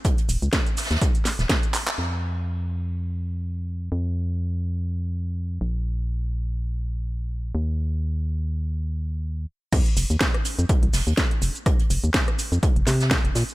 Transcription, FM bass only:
X:1
M:4/4
L:1/16
Q:"Swing 16ths" 1/4=124
K:Dblyd
V:1 name="FM bass" clef=bass
z2 E,,, D,, z3 E,, z3 E,,, z4 | F,,16 | F,,12- F,,2 B,,,2- | B,,,12- B,,,2 E,,2- |
E,,12- E,,2 z2 | F,, z F,,, E,, z3 F,, z C,, F,,, E,, z2 F,,, z | z2 F,,, E,, z3 F,, z F,,, C,2 z F,,, B,, z |]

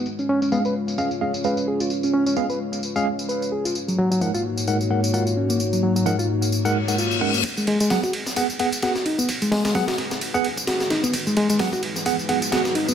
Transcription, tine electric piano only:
X:1
M:4/4
L:1/16
Q:"Swing 16ths" 1/4=130
K:G#dor
V:1 name="Tine electric piano"
z4 [G,CGe] z3 [G,CGe] z [G,CGe] z [G,CGe] z3 | z4 [G,CGe] z4 [G,CGe] z6 | z4 [G,DAf] z3 [G,DAf] z [G,DAf] z [G,DAf] z3 | z4 [G,DAf] z4 [G,DAf] z [G,DAf] z2 [G,DAf] z |
z4 [B,Gf] z3 [B,Gf] z [B,Gf] z [B,Gf] z3 | z4 [B,Gf] z4 [B,Gf] z6 | z4 [B,Gf] z3 [B,Gf] z [B,Gf] z [B,Gf] z3 |]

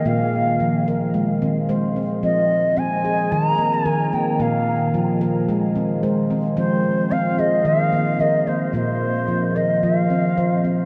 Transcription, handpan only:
X:1
M:4/4
L:1/8
Q:1/4=110
K:Fm
V:1 name="Handpan"
B,2 z B2 C c C | C2 z A2 z B B, | B,2 z B2 C c C | C2 z A2 z B B, |
B,2 z B2 z c C |]
V:2 name="Handpan" clef=bass
B,,2 F,2 A, E, A,2 | F,2 C2 E, B, E,2 | B,,2 F,2 A, E, A,2 | F,2 C2 E, B, E,2 |
B,,2 F,2 F, C F,2 |]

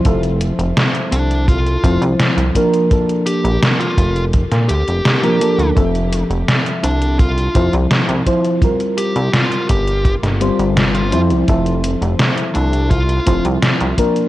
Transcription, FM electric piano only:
X:1
M:4/4
L:1/16
Q:1/4=84
K:F
V:1 name="FM electric piano"
[F,CAe]8- [F,CAe]2 [F,CEc]4 [F,B,DB]2 | [F,B,DA]8- [F,B,DA]2 z3 [F,B,DB] [F,B,DA]2 | [F,CAe]8- [F,CAe]2 [F,CEc]4 [F,CEc]2 | [G,CFB]8- [G,CFB]2 [G,CFc]4 [F,CEc]2 |
[F,CAe]8- [F,CAe]2 [F,CEc]4 [F,B,DB]2 |]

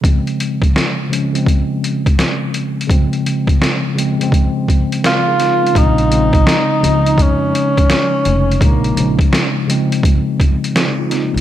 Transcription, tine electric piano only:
X:1
M:4/4
L:1/16
Q:"Swing 16ths" 1/4=84
K:Bbm
V:1 name="Tine electric piano"
z16 | z12 [FB] [EA] [CF] [A,D]- | [A,D] z12 z3 | z12 [EA] [CF] [B,E] [A,D] |]
V:2 name="Tine electric piano" clef=bass
[D,F,A,C]4 z2 [D,F,A,D] [D,F,A,C]4- [D,F,A,C] z4 | [D,F,A,C]4 z2 [D,F,A,C] [D,F,A,C]4- [D,F,A,C] z4 | [D,F,A,C] z [D,F,A,C]3 z [D,F,A,E]4- [D,F,A,E] z4 z | [D,F,A,E] z [D,F,A,D]3 z [D,F,A,C]4- [D,F,A,C] z4 z |]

